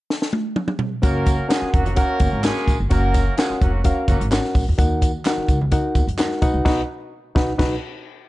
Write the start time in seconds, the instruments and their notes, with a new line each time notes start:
0.10 snare
0.22 snare
0.33 high tom
0.56 mid tom
0.68 mid tom
0.79 floor tom
1.02 upright bass F#1, horn section A#3 C#4 F#4 A#4, reed electric piano C#4 F#4 A#4 F#5, kick, closed hi-hat, tambourine, muted conga
1.26 kick, closed hi-hat, tambourine, muted conga
1.48 horn section G#3 C#4 F4 G#4, reed electric piano C#4 F#4 A#4 F#5, snare, clap, closed hi-hat, tambourine, high conga
1.62 muted upright bass stroke
1.73 upright bass F1, horn section F#3 A#3 C#4 F#4, kick, closed hi-hat
1.86 closed hi-hat, low conga
1.96 horn section A#3 C#4 F#4 A#4, reed electric piano C#4 F#4 A#4 F#5, kick, closed hi-hat, tambourine, muted conga
2.20 upright bass F#1, kick, closed hi-hat, tambourine, low conga
2.33 upright bass G#1
2.43 horn section G#3 A#3 C#4 G#4, reed electric piano C#4 F#4 A#4 G#5, snare, clap, closed hi-hat, tambourine, high conga
2.56 snare
2.67 upright bass A#1, kick, closed hi-hat, tambourine, high conga
2.80 upright bass G1
2.90 upright bass F#1, horn section A#3 C#4 F#4 A#4, reed electric piano C#4 F#4 A#4 F#5, kick, closed hi-hat, tambourine, muted conga
3.14 kick, snare, closed hi-hat, tambourine, muted conga
3.37 horn section G#3 C#4 F4 G#4, reed electric piano C#4 F#4 A#4 F#5, snare, clap, closed hi-hat, tambourine, high conga
3.50 muted upright bass stroke
3.61 upright bass F1, horn section F#3 A#3 C#4 F#4, kick, closed hi-hat
3.84 horn section A#3 C#4 F#4 A#4, reed electric piano C#4 F#4 A#4 F5, kick, closed hi-hat, tambourine, muted conga
4.08 upright bass F#1, horn section F#3 A#3 C#4 F#4, kick, closed hi-hat, tambourine, muted conga, low conga
4.21 upright bass G#1, closed hi-hat
4.31 reed electric piano C#4 F#4 A#4 F#5, snare, clap, closed hi-hat, tambourine, high conga
4.44 snare
4.55 upright bass A#1, kick, open hi-hat, tambourine, high conga
4.69 upright bass E2
4.78 upright bass D#2, reed electric piano D#3 D#4 F#4 A#4 F#5, kick, closed hi-hat, tambourine, muted conga
5.01 kick, closed hi-hat, tambourine, muted conga
5.25 reed electric piano D#4 F#4 A#4 F#5, snare, clap, closed hi-hat, tambourine, high conga
5.38 muted upright bass stroke
5.48 upright bass C#2, kick, closed hi-hat, tambourine
5.61 low conga
5.72 reed electric piano D#4 F#4 A#4 F#5, kick, closed hi-hat, tambourine, muted conga
5.95 upright bass D#2, kick, closed hi-hat, tambourine, low conga
6.07 upright bass F#2, closed hi-hat
6.18 reed electric piano D#4 F#4 A#4 F#5, snare, clap, closed hi-hat, tambourine, high conga
6.31 snare
6.42 upright bass B1, reed electric piano B2 D#4 F#4 B4 F#5, kick, closed hi-hat, tambourine, high conga
6.54 upright bass C2
6.65 upright bass B1, reed electric piano B2 D#4 F#4 B4 F#5, kick, snare, crash
7.35 upright bass B1, reed electric piano D#4 F#4 B4 F#5, kick, snare
7.58 upright bass B1, reed electric piano D#4 F#4 B4, kick, snare, crash